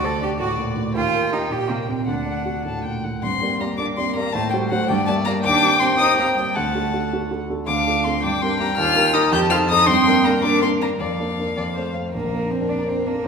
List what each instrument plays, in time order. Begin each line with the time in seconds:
Already playing: grand piano D2, violin D5
0.04 cello A4, grand piano C5
0.21 grand piano D4, cello G4
0.40 grand piano A2, cello F#4, violin D5
0.58 grand piano A#2
0.77 grand piano A2
0.95 grand piano D#2, cello F4, violin A#4 G5
1.14 grand piano A#4
1.32 cello D#4, grand piano G4
1.50 grand piano A#2, cello G4
1.70 grand piano C3, cello A#3
1.88 grand piano A#2, cello C4
2.07 grand piano D2, cello D4, violin F#5
2.26 grand piano D5
2.46 grand piano F#4
2.65 grand piano A2, violin A5
2.85 grand piano A#2, violin G5
3.04 grand piano A2, violin F#5
3.23 grand piano G2, cello C4, violin C6
3.42 grand piano A#3 G4 D5
3.60 grand piano A#3 G4 D5, cello A#3, violin A#5
3.78 grand piano A#3 G4 D5, cello D4, violin A#4 D6
3.97 grand piano A#3 G4 D5, cello C4, violin C6
4.16 grand piano A#3 G4 D5, cello A#3, violin A#5
4.33 grand piano A2, cello A3, violin C5 A5
4.50 cello G3, grand piano A3 F#4 C5, violin G5
4.70 cello F#3, grand piano A3 F#4 C5, violin F#5
4.88 grand piano G2, cello G3, violin D5 G5
5.07 cello A3, grand piano A#3 G4 D5, violin A5
5.25 cello A#3, grand piano A#3 G4 D5, violin A#5
5.44 grand piano D#2, cello D4, violin G5 D6
5.63 grand piano C4 G4 C5
5.80 cello C4, grand piano C4 G4 C5, violin C6
5.98 grand piano C4 G4 C5, cello D#4, violin D#6
6.17 cello A#3, grand piano C4 G4 C5, violin A#5
6.37 cello G3, grand piano C4 G4 C5, violin G5
6.55 grand piano D2, cello A3, violin F#5 A5
6.75 grand piano D4 F#4 A4
6.93 grand piano D4 F#4 A4
7.13 grand piano D4 F#4 A4
7.31 grand piano D4 F#4 A4
7.50 grand piano D4 F#4 A4
7.67 grand piano D2, cello D4, violin F5 D6
7.86 grand piano D4 F4 A4
8.04 cello C4, grand piano D4 F4 A4, violin C6
8.23 grand piano G2, cello D4, violin G5 D6
8.42 cello C4, grand piano D4 G4 A#4, violin C6
8.60 cello A#3, grand piano D4 G4 A#4, violin A#5
8.77 grand piano D#2, cello F4, violin F6
8.96 grand piano D#4 G4 A#4
9.14 grand piano D#4 G4 A#4, cello D#4, violin D#6
9.32 grand piano F2, cello G4, violin A5 G6
9.50 grand piano C4 D#4 A4, cello F4, violin F6
9.69 grand piano C4 D#4 A4, cello D#4, violin D#6
9.87 grand piano G2, cello C4, violin G5 C6
10.07 grand piano A#3 D4 A#4
10.25 cello A#3, grand piano A#3 D4 A#4, violin A#5
10.42 grand piano A#3 D4 A#4, cello D4, violin A#4 D6
10.61 grand piano A#3 D4 A#4, cello C4, violin C6
10.81 grand piano A#3 D4 A#4, cello A#3, violin A#5
11.00 grand piano F2, cello F3, violin D5 F5
11.20 grand piano A#3 D4 A#4
11.39 grand piano A#3 D4 A#4
11.57 grand piano F2, violin D5
11.76 grand piano A3 C4 C5, violin C5
11.94 grand piano A3 C4 C5, violin F5
12.14 grand piano A#1, cello A#3, violin A#4
12.25 grand piano F2
12.34 grand piano A#3
12.43 grand piano D4
12.51 cello C4, grand piano A#4, violin C5
12.61 grand piano D4
12.69 cello D4, violin D5, grand piano D5
12.79 grand piano A#5
12.87 cello C4, violin C5, grand piano D5
12.97 grand piano A#4
13.06 cello A#3, grand piano D4, violin A#4
13.15 grand piano A#3